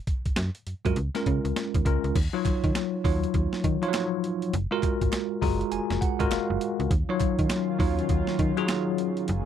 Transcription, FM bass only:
0.26 F#2
0.37 F#2
0.67 F#2
0.86 F#2
0.96 C#2
1.27 C#3
1.45 C#2
1.75 D#2
1.86 C#2
2.04 C#2
2.15 D#2
2.45 D#3
2.64 D#3
3.05 D#2
3.34 D#2
3.64 D#3
4.54 F#1
5.02 G#1
5.42 F#1
5.72 F1
5.90 F1
6.20 G#1
6.32 F#1
6.50 F#1
6.80 C#2
6.91 D#2
7.21 D#3
7.39 D#3
7.80 D#2
8.10 D#2
8.39 D#3
9.29 F#1

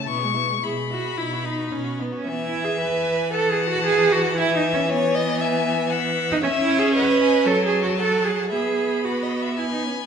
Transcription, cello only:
0.09 B2
0.65 B2
1.19 B2
1.73 B2
2.16 C#4
2.28 B3
2.47 E4
2.64 G#4
2.81 B4
3.34 A4
3.53 G#4
3.70 F#4
3.86 G#4
4.12 F#4
4.38 E4
4.56 D#4
4.74 C#4
4.90 B3
6.32 D#4
6.43 C#4
6.62 E4
6.79 G#4
6.95 B4
7.47 A4
7.65 G#4
7.83 F#4
7.99 A4
8.25 G#4
8.52 G#4
9.04 F#4
9.58 E4
9.72 D#4
9.84 C#4
9.98 B3

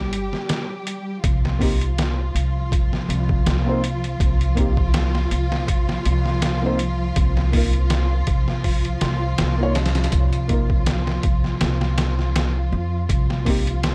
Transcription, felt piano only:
1.59 A#3 C4 D#4
1.63 G4
3.64 A#3 C4 D#4
3.69 C5
4.55 A#3 C4 D#4
4.60 G4
6.61 A#3 C4 D#4
6.66 C5
7.52 A#3 D#4 F4
7.57 A#4
9.58 A#3 D#4 F4
9.63 C#5
10.48 A#3 D#4 F4
10.53 A#4
13.45 A#3 C4 D#4
13.50 G4

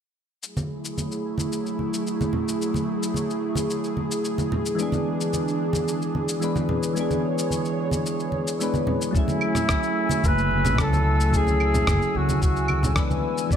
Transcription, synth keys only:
4.75 E3 G#3 B3
4.80 D4 G#4
6.40 E3 G#3 B3 D4
6.44 B4
6.93 E3 G#3 B3
6.99 D4 G#4
8.59 E3 G#3 B3 D4 B4
9.11 F#3 A3 C#4
9.17 E4 G#4
10.77 F#3 A3 C#4 E4
10.81 A4
11.30 F#3 A3 C#4
11.36 E4 G#4
12.95 E3 G#3 B3 D4 B4
13.47 E3 G#3
13.52 B3 D4

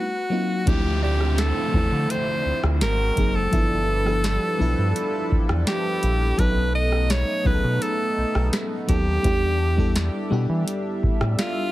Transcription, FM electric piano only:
0.30 F#3 A#3 C4 D#4 F4
0.66 F3 A3 C4 D4 E4
1.73 F3 A3 C4 D4 E4
3.16 F#3 A#3 C4 D#4 G#4
3.51 F3 B3 D4 E4 A4
4.05 F3 B3 D4 E4 A4
4.58 F3 B3 D4 E4 A4
6.37 F#3 B3 C#4 D#4 A4
7.44 F#3 B3 C#4 D#4 G#4
7.54 A4
8.87 F#3 B3 C#4 D#4 A4
9.23 G3 B3 D4 E4 G4
9.76 G3 B3 D4 E4 A4
10.30 G3 B3 D4 E4 G4

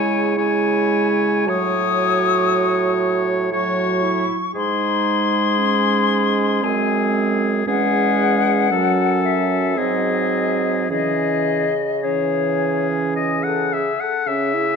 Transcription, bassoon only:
Already playing: C#3
1.46 A2
4.55 G#2
6.64 F#2
7.67 E2
8.71 F#2
9.77 G#2
10.90 C#3
14.27 C#3

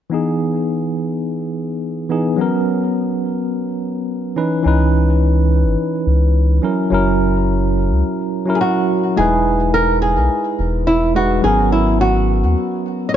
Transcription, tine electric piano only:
0.10 E3 B3 D#4
0.14 G#4
2.09 E3 B3 D#4 G#4
2.36 F#3 B3 C#4
2.41 A#4
4.36 E3 C#4 D#4 B4
4.63 E3 C#4 D#4
4.68 B4
6.62 F#3 C#4 E4 A#4
6.90 F#3 C#4 E4
6.94 A#4
8.46 F#3 C#4 E4
8.50 A#4
9.16 G#3 D#4 E4
9.21 B4
11.15 G#3 D#4 E4 B4
11.42 F#3 B3 C#4
11.47 A#4

